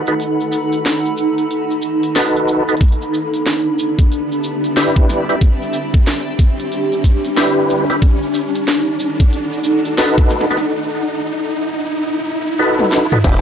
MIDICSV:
0, 0, Header, 1, 6, 480
1, 0, Start_track
1, 0, Tempo, 652174
1, 148, Time_signature, 4, 2, 24, 8
1, 9870, End_track
2, 0, Start_track
2, 0, Title_t, "Ambient pad"
2, 0, Program_c, 0, 92
2, 0, Note_on_c, 0, 63, 89
2, 0, Note_on_c, 0, 69, 75
2, 0, Note_on_c, 0, 78, 74
2, 0, Note_on_c, 0, 83, 86
2, 2066, Note_off_c, 0, 78, 0
2, 2066, Note_on_c, 0, 62, 84
2, 2068, Note_off_c, 0, 63, 0
2, 2456, Note_on_c, 0, 67, 83
2, 2754, Note_on_c, 0, 76, 80
2, 3627, Note_off_c, 0, 69, 0
2, 5896, Note_on_c, 0, 63, 84
2, 5904, Note_off_c, 0, 76, 0
2, 5906, Note_off_c, 0, 67, 0
2, 5907, Note_off_c, 0, 62, 0
2, 6286, Note_on_c, 0, 69, 74
2, 6452, Note_on_c, 0, 78, 98
2, 7821, Note_off_c, 0, 78, 0
2, 7822, Note_off_c, 0, 63, 0
2, 7822, Note_off_c, 0, 69, 0
2, 7832, Note_off_c, 0, 83, 0
2, 9870, End_track
3, 0, Start_track
3, 0, Title_t, "Tonewheel organ"
3, 0, Program_c, 1, 16
3, 58, Note_on_c, 1, 66, 69
3, 58, Note_on_c, 1, 71, 86
3, 59, Note_on_c, 1, 63, 75
3, 59, Note_on_c, 1, 69, 67
3, 106, Note_off_c, 1, 66, 0
3, 106, Note_off_c, 1, 71, 0
3, 107, Note_off_c, 1, 63, 0
3, 107, Note_off_c, 1, 69, 0
3, 1587, Note_on_c, 1, 71, 100
3, 1588, Note_on_c, 1, 63, 88
3, 1588, Note_on_c, 1, 69, 82
3, 1589, Note_on_c, 1, 66, 79
3, 1940, Note_off_c, 1, 63, 0
3, 1940, Note_off_c, 1, 69, 0
3, 1940, Note_off_c, 1, 71, 0
3, 1941, Note_off_c, 1, 66, 0
3, 1977, Note_on_c, 1, 66, 64
3, 1977, Note_on_c, 1, 69, 71
3, 1977, Note_on_c, 1, 71, 82
3, 1978, Note_on_c, 1, 63, 77
3, 2026, Note_off_c, 1, 63, 0
3, 2026, Note_off_c, 1, 66, 0
3, 2026, Note_off_c, 1, 69, 0
3, 2026, Note_off_c, 1, 71, 0
3, 3507, Note_on_c, 1, 64, 86
3, 3508, Note_on_c, 1, 62, 95
3, 3508, Note_on_c, 1, 71, 101
3, 3509, Note_on_c, 1, 67, 84
3, 3860, Note_off_c, 1, 62, 0
3, 3860, Note_off_c, 1, 64, 0
3, 3860, Note_off_c, 1, 71, 0
3, 3861, Note_off_c, 1, 67, 0
3, 3895, Note_on_c, 1, 62, 80
3, 3895, Note_on_c, 1, 64, 68
3, 3895, Note_on_c, 1, 67, 70
3, 3895, Note_on_c, 1, 71, 84
3, 3945, Note_off_c, 1, 62, 0
3, 3945, Note_off_c, 1, 64, 0
3, 3945, Note_off_c, 1, 67, 0
3, 3945, Note_off_c, 1, 71, 0
3, 5424, Note_on_c, 1, 62, 93
3, 5424, Note_on_c, 1, 71, 101
3, 5425, Note_on_c, 1, 64, 86
3, 5425, Note_on_c, 1, 67, 84
3, 5778, Note_off_c, 1, 62, 0
3, 5778, Note_off_c, 1, 71, 0
3, 5779, Note_off_c, 1, 64, 0
3, 5779, Note_off_c, 1, 67, 0
3, 5812, Note_on_c, 1, 64, 67
3, 5812, Note_on_c, 1, 67, 73
3, 5813, Note_on_c, 1, 62, 79
3, 5813, Note_on_c, 1, 71, 85
3, 5863, Note_off_c, 1, 67, 0
3, 5864, Note_off_c, 1, 62, 0
3, 5864, Note_off_c, 1, 64, 0
3, 5864, Note_off_c, 1, 71, 0
3, 7346, Note_on_c, 1, 63, 94
3, 7346, Note_on_c, 1, 69, 84
3, 7346, Note_on_c, 1, 71, 108
3, 7347, Note_on_c, 1, 66, 89
3, 7699, Note_off_c, 1, 63, 0
3, 7699, Note_off_c, 1, 69, 0
3, 7699, Note_off_c, 1, 71, 0
3, 7700, Note_off_c, 1, 66, 0
3, 7733, Note_on_c, 1, 63, 75
3, 7733, Note_on_c, 1, 69, 75
3, 7733, Note_on_c, 1, 71, 86
3, 7734, Note_on_c, 1, 66, 73
3, 7784, Note_off_c, 1, 63, 0
3, 7784, Note_off_c, 1, 66, 0
3, 7784, Note_off_c, 1, 69, 0
3, 7784, Note_off_c, 1, 71, 0
3, 9268, Note_on_c, 1, 66, 94
3, 9269, Note_on_c, 1, 63, 100
3, 9269, Note_on_c, 1, 71, 105
3, 9270, Note_on_c, 1, 69, 86
3, 9620, Note_off_c, 1, 66, 0
3, 9621, Note_off_c, 1, 63, 0
3, 9621, Note_off_c, 1, 69, 0
3, 9621, Note_off_c, 1, 71, 0
3, 9658, Note_on_c, 1, 69, 73
3, 9659, Note_on_c, 1, 63, 81
3, 9659, Note_on_c, 1, 71, 87
3, 9660, Note_on_c, 1, 66, 71
3, 9707, Note_off_c, 1, 63, 0
3, 9707, Note_off_c, 1, 66, 0
3, 9707, Note_off_c, 1, 69, 0
3, 9707, Note_off_c, 1, 71, 0
3, 9749, Note_on_c, 1, 62, 100
3, 9749, Note_on_c, 1, 71, 112
3, 9750, Note_on_c, 1, 64, 92
3, 9750, Note_on_c, 1, 67, 95
3, 9870, Note_off_c, 1, 62, 0
3, 9870, Note_off_c, 1, 64, 0
3, 9870, Note_off_c, 1, 67, 0
3, 9870, Note_off_c, 1, 71, 0
3, 9870, End_track
4, 0, Start_track
4, 0, Title_t, "Wobble bass"
4, 0, Program_c, 2, 39
4, 9747, Note_on_c, 2, 28, 96
4, 9870, Note_off_c, 2, 28, 0
4, 9870, End_track
5, 0, Start_track
5, 0, Title_t, "Riser"
5, 0, Program_c, 3, 103
5, 0, Note_on_c, 3, 60, 75
5, 9748, Note_off_c, 3, 60, 0
5, 9870, End_track
6, 0, Start_track
6, 0, Title_t, "Drums"
6, 50, Note_on_c, 9, 69, 39
6, 53, Note_on_c, 9, 42, 66
6, 124, Note_off_c, 9, 69, 0
6, 127, Note_off_c, 9, 42, 0
6, 146, Note_on_c, 9, 42, 55
6, 156, Note_on_c, 9, 69, 51
6, 220, Note_off_c, 9, 42, 0
6, 229, Note_off_c, 9, 69, 0
6, 299, Note_on_c, 9, 69, 35
6, 372, Note_off_c, 9, 69, 0
6, 385, Note_on_c, 9, 69, 93
6, 459, Note_off_c, 9, 69, 0
6, 534, Note_on_c, 9, 69, 41
6, 536, Note_on_c, 9, 42, 63
6, 607, Note_off_c, 9, 69, 0
6, 610, Note_off_c, 9, 42, 0
6, 631, Note_on_c, 9, 38, 120
6, 631, Note_on_c, 9, 42, 49
6, 639, Note_on_c, 9, 69, 49
6, 705, Note_off_c, 9, 38, 0
6, 705, Note_off_c, 9, 42, 0
6, 712, Note_off_c, 9, 69, 0
6, 775, Note_on_c, 9, 69, 37
6, 849, Note_off_c, 9, 69, 0
6, 863, Note_on_c, 9, 69, 80
6, 937, Note_off_c, 9, 69, 0
6, 1017, Note_on_c, 9, 42, 63
6, 1017, Note_on_c, 9, 69, 41
6, 1090, Note_off_c, 9, 69, 0
6, 1091, Note_off_c, 9, 42, 0
6, 1109, Note_on_c, 9, 69, 50
6, 1110, Note_on_c, 9, 42, 51
6, 1183, Note_off_c, 9, 69, 0
6, 1184, Note_off_c, 9, 42, 0
6, 1257, Note_on_c, 9, 69, 34
6, 1331, Note_off_c, 9, 69, 0
6, 1340, Note_on_c, 9, 69, 100
6, 1414, Note_off_c, 9, 69, 0
6, 1496, Note_on_c, 9, 69, 43
6, 1497, Note_on_c, 9, 42, 67
6, 1570, Note_off_c, 9, 42, 0
6, 1570, Note_off_c, 9, 69, 0
6, 1589, Note_on_c, 9, 38, 122
6, 1589, Note_on_c, 9, 42, 52
6, 1591, Note_on_c, 9, 69, 56
6, 1662, Note_off_c, 9, 38, 0
6, 1662, Note_off_c, 9, 42, 0
6, 1665, Note_off_c, 9, 69, 0
6, 1737, Note_on_c, 9, 69, 38
6, 1811, Note_off_c, 9, 69, 0
6, 1827, Note_on_c, 9, 69, 96
6, 1901, Note_off_c, 9, 69, 0
6, 1975, Note_on_c, 9, 69, 40
6, 1978, Note_on_c, 9, 42, 28
6, 1988, Note_off_c, 9, 42, 0
6, 1988, Note_on_c, 9, 42, 35
6, 2037, Note_off_c, 9, 42, 0
6, 2037, Note_on_c, 9, 42, 39
6, 2048, Note_off_c, 9, 69, 0
6, 2067, Note_on_c, 9, 36, 123
6, 2070, Note_off_c, 9, 42, 0
6, 2070, Note_on_c, 9, 42, 51
6, 2070, Note_on_c, 9, 69, 51
6, 2121, Note_off_c, 9, 42, 0
6, 2121, Note_on_c, 9, 42, 52
6, 2140, Note_off_c, 9, 36, 0
6, 2144, Note_off_c, 9, 69, 0
6, 2151, Note_off_c, 9, 42, 0
6, 2151, Note_on_c, 9, 42, 55
6, 2221, Note_on_c, 9, 69, 37
6, 2225, Note_off_c, 9, 42, 0
6, 2295, Note_off_c, 9, 69, 0
6, 2311, Note_on_c, 9, 69, 93
6, 2385, Note_off_c, 9, 69, 0
6, 2456, Note_on_c, 9, 42, 66
6, 2466, Note_on_c, 9, 69, 39
6, 2529, Note_off_c, 9, 42, 0
6, 2540, Note_off_c, 9, 69, 0
6, 2550, Note_on_c, 9, 38, 113
6, 2550, Note_on_c, 9, 42, 50
6, 2551, Note_on_c, 9, 69, 47
6, 2623, Note_off_c, 9, 38, 0
6, 2623, Note_off_c, 9, 42, 0
6, 2625, Note_off_c, 9, 69, 0
6, 2788, Note_on_c, 9, 69, 84
6, 2862, Note_off_c, 9, 69, 0
6, 2934, Note_on_c, 9, 36, 100
6, 2938, Note_on_c, 9, 42, 59
6, 2939, Note_on_c, 9, 69, 39
6, 3008, Note_off_c, 9, 36, 0
6, 3012, Note_off_c, 9, 42, 0
6, 3013, Note_off_c, 9, 69, 0
6, 3030, Note_on_c, 9, 42, 48
6, 3033, Note_on_c, 9, 69, 46
6, 3104, Note_off_c, 9, 42, 0
6, 3106, Note_off_c, 9, 69, 0
6, 3179, Note_on_c, 9, 69, 40
6, 3253, Note_off_c, 9, 69, 0
6, 3264, Note_on_c, 9, 69, 90
6, 3338, Note_off_c, 9, 69, 0
6, 3416, Note_on_c, 9, 42, 62
6, 3420, Note_on_c, 9, 69, 38
6, 3490, Note_off_c, 9, 42, 0
6, 3493, Note_off_c, 9, 69, 0
6, 3509, Note_on_c, 9, 38, 120
6, 3509, Note_on_c, 9, 42, 51
6, 3510, Note_on_c, 9, 69, 46
6, 3583, Note_off_c, 9, 38, 0
6, 3583, Note_off_c, 9, 42, 0
6, 3583, Note_off_c, 9, 69, 0
6, 3652, Note_on_c, 9, 36, 98
6, 3726, Note_off_c, 9, 36, 0
6, 3750, Note_on_c, 9, 40, 35
6, 3750, Note_on_c, 9, 69, 84
6, 3823, Note_off_c, 9, 40, 0
6, 3824, Note_off_c, 9, 69, 0
6, 3897, Note_on_c, 9, 42, 60
6, 3897, Note_on_c, 9, 69, 35
6, 3971, Note_off_c, 9, 42, 0
6, 3971, Note_off_c, 9, 69, 0
6, 3984, Note_on_c, 9, 36, 117
6, 3987, Note_on_c, 9, 69, 50
6, 3989, Note_on_c, 9, 42, 52
6, 4058, Note_off_c, 9, 36, 0
6, 4061, Note_off_c, 9, 69, 0
6, 4063, Note_off_c, 9, 42, 0
6, 4138, Note_on_c, 9, 69, 33
6, 4212, Note_off_c, 9, 69, 0
6, 4221, Note_on_c, 9, 69, 93
6, 4294, Note_off_c, 9, 69, 0
6, 4372, Note_on_c, 9, 36, 104
6, 4372, Note_on_c, 9, 69, 38
6, 4377, Note_on_c, 9, 42, 63
6, 4445, Note_off_c, 9, 36, 0
6, 4446, Note_off_c, 9, 69, 0
6, 4450, Note_off_c, 9, 42, 0
6, 4459, Note_on_c, 9, 69, 45
6, 4468, Note_on_c, 9, 38, 112
6, 4468, Note_on_c, 9, 42, 50
6, 4533, Note_off_c, 9, 69, 0
6, 4542, Note_off_c, 9, 38, 0
6, 4542, Note_off_c, 9, 42, 0
6, 4703, Note_on_c, 9, 36, 103
6, 4708, Note_on_c, 9, 69, 95
6, 4777, Note_off_c, 9, 36, 0
6, 4781, Note_off_c, 9, 69, 0
6, 4853, Note_on_c, 9, 69, 37
6, 4856, Note_on_c, 9, 42, 61
6, 4926, Note_off_c, 9, 69, 0
6, 4930, Note_off_c, 9, 42, 0
6, 4946, Note_on_c, 9, 42, 52
6, 4946, Note_on_c, 9, 69, 51
6, 5019, Note_off_c, 9, 42, 0
6, 5020, Note_off_c, 9, 69, 0
6, 5096, Note_on_c, 9, 69, 37
6, 5170, Note_off_c, 9, 69, 0
6, 5183, Note_on_c, 9, 36, 62
6, 5187, Note_on_c, 9, 69, 92
6, 5257, Note_off_c, 9, 36, 0
6, 5261, Note_off_c, 9, 69, 0
6, 5334, Note_on_c, 9, 42, 63
6, 5335, Note_on_c, 9, 69, 41
6, 5407, Note_off_c, 9, 42, 0
6, 5409, Note_off_c, 9, 69, 0
6, 5426, Note_on_c, 9, 38, 116
6, 5426, Note_on_c, 9, 42, 52
6, 5428, Note_on_c, 9, 69, 47
6, 5500, Note_off_c, 9, 38, 0
6, 5500, Note_off_c, 9, 42, 0
6, 5502, Note_off_c, 9, 69, 0
6, 5666, Note_on_c, 9, 69, 81
6, 5739, Note_off_c, 9, 69, 0
6, 5813, Note_on_c, 9, 69, 37
6, 5815, Note_on_c, 9, 42, 63
6, 5886, Note_off_c, 9, 69, 0
6, 5889, Note_off_c, 9, 42, 0
6, 5903, Note_on_c, 9, 36, 117
6, 5907, Note_on_c, 9, 69, 50
6, 5908, Note_on_c, 9, 42, 54
6, 5977, Note_off_c, 9, 36, 0
6, 5980, Note_off_c, 9, 69, 0
6, 5981, Note_off_c, 9, 42, 0
6, 6054, Note_on_c, 9, 69, 30
6, 6128, Note_off_c, 9, 69, 0
6, 6140, Note_on_c, 9, 69, 91
6, 6213, Note_off_c, 9, 69, 0
6, 6293, Note_on_c, 9, 69, 37
6, 6297, Note_on_c, 9, 42, 66
6, 6366, Note_off_c, 9, 69, 0
6, 6370, Note_off_c, 9, 42, 0
6, 6384, Note_on_c, 9, 69, 43
6, 6387, Note_on_c, 9, 38, 114
6, 6387, Note_on_c, 9, 42, 50
6, 6457, Note_off_c, 9, 69, 0
6, 6460, Note_off_c, 9, 38, 0
6, 6460, Note_off_c, 9, 42, 0
6, 6620, Note_on_c, 9, 69, 85
6, 6693, Note_off_c, 9, 69, 0
6, 6771, Note_on_c, 9, 36, 99
6, 6772, Note_on_c, 9, 69, 33
6, 6775, Note_on_c, 9, 42, 62
6, 6845, Note_off_c, 9, 36, 0
6, 6846, Note_off_c, 9, 69, 0
6, 6849, Note_off_c, 9, 42, 0
6, 6864, Note_on_c, 9, 69, 51
6, 6866, Note_on_c, 9, 42, 50
6, 6938, Note_off_c, 9, 69, 0
6, 6940, Note_off_c, 9, 42, 0
6, 7012, Note_on_c, 9, 69, 33
6, 7085, Note_off_c, 9, 69, 0
6, 7094, Note_on_c, 9, 69, 96
6, 7168, Note_off_c, 9, 69, 0
6, 7251, Note_on_c, 9, 69, 42
6, 7253, Note_on_c, 9, 42, 64
6, 7324, Note_off_c, 9, 69, 0
6, 7326, Note_off_c, 9, 42, 0
6, 7340, Note_on_c, 9, 69, 45
6, 7346, Note_on_c, 9, 38, 123
6, 7346, Note_on_c, 9, 42, 51
6, 7414, Note_off_c, 9, 69, 0
6, 7420, Note_off_c, 9, 38, 0
6, 7420, Note_off_c, 9, 42, 0
6, 7491, Note_on_c, 9, 36, 92
6, 7565, Note_off_c, 9, 36, 0
6, 7577, Note_on_c, 9, 69, 92
6, 7585, Note_on_c, 9, 40, 37
6, 7651, Note_off_c, 9, 69, 0
6, 7659, Note_off_c, 9, 40, 0
6, 7659, Note_on_c, 9, 40, 31
6, 7732, Note_on_c, 9, 69, 34
6, 7733, Note_off_c, 9, 40, 0
6, 7733, Note_on_c, 9, 40, 27
6, 7733, Note_on_c, 9, 42, 63
6, 7780, Note_off_c, 9, 40, 0
6, 7780, Note_on_c, 9, 40, 22
6, 7806, Note_off_c, 9, 69, 0
6, 7807, Note_off_c, 9, 42, 0
6, 7854, Note_off_c, 9, 40, 0
6, 9414, Note_on_c, 9, 48, 52
6, 9488, Note_off_c, 9, 48, 0
6, 9509, Note_on_c, 9, 38, 74
6, 9582, Note_off_c, 9, 38, 0
6, 9657, Note_on_c, 9, 45, 82
6, 9731, Note_off_c, 9, 45, 0
6, 9747, Note_on_c, 9, 36, 127
6, 9750, Note_on_c, 9, 42, 58
6, 9750, Note_on_c, 9, 49, 108
6, 9820, Note_off_c, 9, 36, 0
6, 9824, Note_off_c, 9, 42, 0
6, 9824, Note_off_c, 9, 49, 0
6, 9870, End_track
0, 0, End_of_file